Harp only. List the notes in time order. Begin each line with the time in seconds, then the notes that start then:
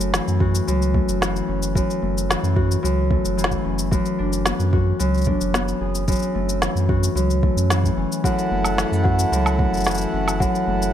Already playing: F#2 A3
0.13 E3
0.40 F#4
0.67 F#2
0.95 A3
1.21 E3
1.48 C#4
1.75 F#2
2.02 A3
2.29 E3
2.56 F#4
2.83 F#2
3.10 A3
3.37 E3
3.64 C#4
3.91 F#2
4.18 D4
4.46 B3
4.73 F#4
4.99 F#2
5.27 D4
5.54 B3
5.81 G#4
6.08 F#2
6.35 A3
6.62 E3
6.89 F#4
7.15 F#2
7.43 A3
7.70 E3
7.97 C#4
8.24 F#2
8.51 A3
8.78 E3
9.05 F#4
9.32 F#2
9.59 A3
9.86 E3
10.13 C#4
10.40 F#2
10.67 A3